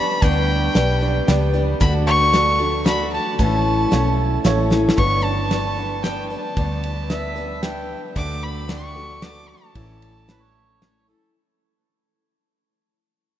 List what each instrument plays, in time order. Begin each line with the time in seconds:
Already playing: steel-string acoustic guitar G3 B3 D4 B4, upright piano G4 B4 D5, fiddle B5
0.22 fingered electric bass D2, steel-string acoustic guitar G2 D3 G3 B3 D4 B4, fiddle G5, kick, closed hi-hat
0.74 fingered electric bass B1, steel-string acoustic guitar G3 B3 D4 B4, upright piano G4 B4 D5, snare, closed hi-hat
1.01 steel-string acoustic guitar G3 B3 D4 B4
1.27 fingered electric bass C#2, steel-string acoustic guitar G3 B3 D4 B4, upright piano G4 B4 D5, snare, closed hi-hat
1.53 steel-string acoustic guitar G3 B3 D4 B4
1.80 fingered electric bass D2, steel-string acoustic guitar D3 A3 D4 F#4 A4, fiddle B5, kick, closed hi-hat
2.07 fiddle C#6
2.32 steel-string acoustic guitar A3 D4 F#4 A4, upright piano F#4 A4 D5, snare, closed hi-hat
2.59 steel-string acoustic guitar D4 F#4 A4
2.85 steel-string acoustic guitar A3 D4 F#4 A4, upright piano F#4 A4 D5, fiddle B5, snare, closed hi-hat
3.13 fiddle A5
3.39 fingered electric bass A1, steel-string acoustic guitar A2 E3 A3 C#4 E4 A4, fiddle A5, kick, closed hi-hat
3.91 fingered electric bass B1, steel-string acoustic guitar A3 C#4 E4 A4, upright piano E4 A4 C#5, snare, closed hi-hat
4.44 fingered electric bass A1, steel-string acoustic guitar A3 C#4 E4 A4, upright piano E4 A4 C#5, snare, closed hi-hat
4.70 steel-string acoustic guitar A3 C#4 E4 A4, snare
4.89 snare
4.97 fingered electric bass G1, steel-string acoustic guitar G2 D3 G3 B3 D4 B4, fiddle C#6, kick, ride
5.24 fiddle A5
5.51 steel-string acoustic guitar G3 B3 D4 B4, snare, ride
5.77 steel-string acoustic guitar G3 B3 D4 B4
6.03 steel-string acoustic guitar G3 B3 D4 B4, fiddle G5, snare, ride
6.29 steel-string acoustic guitar G3 B3 D4 B4, fiddle A5
6.57 fingered electric bass D2, steel-string acoustic guitar G2 D3 G3 B3 D4 B4, kick, ride
6.84 ride
7.10 steel-string acoustic guitar G3 B3 D4 B4, harmonica E5, snare, ride
7.36 steel-string acoustic guitar G3 B3 D4 B4
7.63 steel-string acoustic guitar G3 B3 D4 B4, harmonica G5, snare, ride
8.15 fingered electric bass D2, steel-string acoustic guitar D3 A3 D4 F#4 A4, fiddle D6, kick, ride
8.43 fiddle B5
8.68 steel-string acoustic guitar A3 D4 F#4 A4, fiddle C#6, snare, ride
8.95 steel-string acoustic guitar D4 F#4 A4
9.22 steel-string acoustic guitar A3 D4 F#4 A4, fiddle D6, snare, ride
9.49 fiddle A5
9.75 fingered electric bass A1, steel-string acoustic guitar A2 E3 A3 C#4 E4 A4, kick, ride
10.02 ride
10.28 steel-string acoustic guitar A3 C#4 E4 A4, harmonica B4, snare, ride
10.43 harmonica C#5
10.82 steel-string acoustic guitar A3 C#4 E4 A4, snare, ride
11.08 steel-string acoustic guitar A3 C#4 E4 A4, harmonica A4